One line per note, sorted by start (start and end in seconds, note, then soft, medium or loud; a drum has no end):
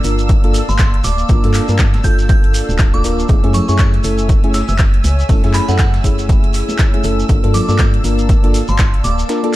0.00 3.25 A#3 medium
0.00 0.40 A#3 medium
0.00 3.25 D5 medium
0.00 3.25 F5 medium
0.00 3.25 A5 medium
0.00 3.28 E6 medium
0.00 shekere loud
0.04 0.62 G1 medium
0.04 0.40 D4 medium
0.04 0.40 F4 medium
0.04 0.41 A#4 medium
0.04 closed hi-hat medium
0.04 open hi-hat loud
0.19 closed hi-hat soft
0.19 shekere medium
0.29 kick loud
0.29 closed hi-hat medium
0.29 shekere soft
0.43 0.60 A#3 loud
0.43 0.60 D4 medium
0.43 0.60 F4 medium
0.43 0.60 A4 loud
0.43 closed hi-hat medium
0.54 snare soft
0.54 closed hi-hat medium
0.54 open hi-hat loud
0.54 shekere loud
0.69 1.00 G1 medium
0.69 0.83 C6 medium
0.69 muted conga soft
0.69 high conga medium
0.69 shekere medium
0.79 kick loud
0.79 snare loud
0.79 clap loud
0.79 closed hi-hat medium
0.79 shekere soft
0.94 closed hi-hat medium
1.04 1.23 D1 loud
1.04 1.75 D6 medium
1.04 closed hi-hat medium
1.04 open hi-hat loud
1.04 muted conga medium
1.04 shekere loud
1.18 shekere medium
1.28 1.40 G1 loud
1.28 1.41 A#3 medium
1.28 1.42 D4 medium
1.28 1.42 F4 medium
1.28 1.42 A#4 loud
1.28 kick loud
1.28 closed hi-hat medium
1.28 shekere soft
1.43 1.61 G2 medium
1.43 1.65 A#3 loud
1.43 1.65 D4 medium
1.43 1.65 F4 medium
1.43 1.66 A4 loud
1.43 closed hi-hat medium
1.54 clap medium
1.54 open hi-hat loud
1.54 shekere medium
1.68 2.00 G2 medium
1.68 1.85 A#3 medium
1.68 1.85 D4 medium
1.68 1.85 F4 medium
1.68 1.85 A#4 medium
1.68 closed hi-hat medium
1.68 muted conga medium
1.68 shekere medium
1.79 kick loud
1.79 snare loud
1.79 clap loud
1.79 closed hi-hat medium
1.79 shekere soft
1.94 snare medium
1.94 closed hi-hat medium
1.94 muted conga medium
2.04 2.62 G1 medium
2.04 2.90 A#3 medium
2.04 2.90 D4 medium
2.04 2.90 F4 medium
2.04 2.91 A4 medium
2.04 2.21 G6 medium
2.04 kick medium
2.04 closed hi-hat medium
2.04 open hi-hat loud
2.04 shekere loud
2.19 snare soft
2.19 closed hi-hat soft
2.19 shekere medium
2.29 2.69 G6 medium
2.29 kick loud
2.29 closed hi-hat medium
2.29 shekere soft
2.44 closed hi-hat medium
2.54 snare medium
2.54 closed hi-hat medium
2.54 open hi-hat loud
2.54 shekere medium
2.69 3.25 D1 medium
2.69 high conga medium
2.69 shekere medium
2.79 kick loud
2.79 snare loud
2.79 clap loud
2.79 closed hi-hat medium
2.79 shekere soft
2.93 3.03 A#3 medium
2.93 3.03 D4 medium
2.93 3.03 F4 medium
2.93 3.03 A4 medium
2.93 3.35 D6 medium
2.93 closed hi-hat medium
2.93 muted conga soft
3.04 3.26 A#3 medium
3.04 3.26 D4 medium
3.04 3.26 F4 medium
3.04 3.26 A#4 medium
3.04 closed hi-hat medium
3.04 open hi-hat loud
3.04 shekere loud
3.19 shekere medium
3.28 3.40 F#1 loud
3.28 3.40 A3 medium
3.28 7.25 A3 medium
3.28 3.40 C#4 medium
3.28 3.40 E4 medium
3.28 3.40 G#4 medium
3.28 7.25 C#5 medium
3.28 7.25 E5 medium
3.28 7.25 G#5 medium
3.28 9.56 E6 medium
3.28 kick loud
3.28 closed hi-hat medium
3.28 shekere soft
3.43 3.61 F#2 medium
3.43 3.65 A3 loud
3.43 3.65 C#4 medium
3.43 3.65 E4 medium
3.43 3.65 G#4 loud
3.43 closed hi-hat medium
3.53 3.66 C#6 medium
3.53 closed hi-hat medium
3.53 open hi-hat loud
3.53 low conga medium
3.53 shekere loud
3.68 4.00 F#2 medium
3.68 4.02 A3 medium
3.68 4.02 C#4 medium
3.68 4.02 E4 medium
3.68 4.02 G#4 loud
3.68 3.83 C#6 medium
3.68 snare soft
3.68 shekere medium
3.79 kick loud
3.79 snare loud
3.79 clap loud
3.79 closed hi-hat medium
3.79 shekere soft
3.94 closed hi-hat medium
4.04 4.62 F#1 medium
4.04 4.40 A3 medium
4.04 4.40 C#4 medium
4.04 4.40 E4 medium
4.04 4.40 A4 medium
4.04 closed hi-hat medium
4.04 open hi-hat medium
4.04 shekere medium
4.18 closed hi-hat soft
4.18 shekere medium
4.29 kick loud
4.29 closed hi-hat medium
4.29 shekere soft
4.43 4.60 A3 loud
4.43 4.60 C#4 medium
4.43 4.60 E4 medium
4.43 4.60 G#4 loud
4.43 closed hi-hat medium
4.54 4.64 E6 medium
4.54 snare loud
4.54 closed hi-hat medium
4.54 open hi-hat loud
4.54 shekere medium
4.69 5.00 F#1 medium
4.69 4.75 E6 medium
4.69 muted conga soft
4.69 high conga medium
4.69 shekere soft
4.79 kick loud
4.79 snare loud
4.79 clap loud
4.79 closed hi-hat medium
4.79 shekere soft
4.94 closed hi-hat medium
5.04 5.24 C#2 loud
5.04 closed hi-hat medium
5.04 open hi-hat medium
5.04 muted conga medium
5.04 shekere loud
5.19 closed hi-hat soft
5.19 shekere soft
5.29 5.40 F#1 loud
5.29 5.41 A3 medium
5.29 5.42 C#4 medium
5.29 5.42 E4 medium
5.29 5.42 A4 loud
5.29 kick loud
5.29 closed hi-hat medium
5.29 open hi-hat medium
5.29 shekere soft
5.43 5.61 F#2 medium
5.43 5.65 A3 loud
5.43 5.65 C#4 medium
5.43 5.65 E4 medium
5.43 5.65 G#4 loud
5.43 snare soft
5.43 closed hi-hat medium
5.54 5.66 B5 medium
5.54 clap medium
5.54 closed hi-hat medium
5.54 open hi-hat loud
5.54 shekere medium
5.68 6.00 F#2 medium
5.68 5.85 A3 medium
5.68 5.85 C#4 medium
5.68 5.85 E4 medium
5.68 5.85 A4 medium
5.68 5.75 F#5 loud
5.68 snare soft
5.68 muted conga medium
5.68 shekere medium
5.79 5.89 F#5 medium
5.79 kick loud
5.79 snare loud
5.79 clap loud
5.79 closed hi-hat medium
5.79 shekere soft
5.94 snare medium
5.94 closed hi-hat medium
6.03 6.62 F#1 medium
6.03 6.90 A3 medium
6.03 6.90 C#4 medium
6.03 6.90 E4 medium
6.03 6.91 G#4 medium
6.03 kick medium
6.03 closed hi-hat medium
6.03 open hi-hat medium
6.03 shekere medium
6.19 snare soft
6.19 closed hi-hat soft
6.19 shekere medium
6.29 kick loud
6.29 closed hi-hat medium
6.29 shekere soft
6.44 closed hi-hat medium
6.53 snare medium
6.53 closed hi-hat medium
6.53 open hi-hat loud
6.53 shekere medium
6.69 high conga loud
6.69 shekere medium
6.79 kick loud
6.79 snare loud
6.79 clap loud
6.79 closed hi-hat medium
6.79 shekere soft
6.93 7.02 A3 medium
6.93 7.03 C#4 medium
6.93 7.03 E4 medium
6.93 7.03 G#4 medium
6.93 closed hi-hat medium
6.93 muted conga soft
7.04 7.23 F#1 medium
7.04 7.26 A3 medium
7.04 7.26 C#4 medium
7.04 7.26 E4 medium
7.04 7.26 A4 medium
7.04 closed hi-hat medium
7.04 open hi-hat medium
7.04 shekere medium
7.20 shekere medium
7.29 7.40 G1 loud
7.29 7.40 A#3 medium
7.29 9.56 A#3 medium
7.29 7.40 D4 medium
7.29 7.40 F4 medium
7.29 7.41 A4 medium
7.29 9.56 D5 medium
7.29 9.56 F5 medium
7.29 9.56 A5 medium
7.29 kick loud
7.29 closed hi-hat medium
7.29 shekere soft
7.43 7.61 G2 loud
7.43 7.65 A#3 loud
7.43 7.65 D4 loud
7.43 7.65 F4 medium
7.43 7.66 A4 loud
7.43 closed hi-hat medium
7.54 7.66 D6 medium
7.54 closed hi-hat medium
7.54 open hi-hat loud
7.54 low conga medium
7.54 shekere loud
7.68 8.00 G2 medium
7.68 8.02 A#3 medium
7.68 8.02 D4 medium
7.68 8.02 F4 medium
7.68 8.02 A4 loud
7.68 7.83 D6 loud
7.68 snare soft
7.68 shekere medium
7.79 kick loud
7.79 snare loud
7.79 clap loud
7.79 closed hi-hat medium
7.79 shekere soft
7.94 closed hi-hat medium
8.04 8.62 G1 medium
8.04 8.40 A#3 medium
8.04 8.40 D4 medium
8.04 8.40 F4 medium
8.04 8.40 A#4 medium
8.04 closed hi-hat medium
8.04 open hi-hat medium
8.04 shekere medium
8.19 closed hi-hat soft
8.19 shekere medium
8.29 kick loud
8.29 closed hi-hat medium
8.29 shekere soft
8.43 8.60 A#3 loud
8.43 8.60 D4 medium
8.43 8.60 F4 medium
8.43 8.60 A4 loud
8.43 closed hi-hat medium
8.54 snare soft
8.54 closed hi-hat medium
8.54 open hi-hat loud
8.54 shekere medium
8.68 9.00 G1 medium
8.68 8.83 C6 medium
8.68 muted conga soft
8.68 high conga loud
8.68 shekere soft
8.79 kick loud
8.79 snare loud
8.79 clap loud
8.79 closed hi-hat medium
8.79 shekere soft
8.94 closed hi-hat medium
9.04 9.23 D1 loud
9.04 9.56 D6 loud
9.04 closed hi-hat medium
9.04 open hi-hat medium
9.04 muted conga medium
9.04 shekere medium
9.19 snare soft
9.19 shekere medium
9.29 9.41 A#3 medium
9.29 9.42 D4 medium
9.29 9.42 F4 medium
9.29 9.42 A#4 loud
9.29 snare loud
9.29 closed hi-hat medium
9.29 shekere soft
9.43 9.56 A#3 loud
9.43 9.56 D4 medium
9.43 9.56 F4 medium
9.43 9.56 A4 loud
9.43 closed hi-hat medium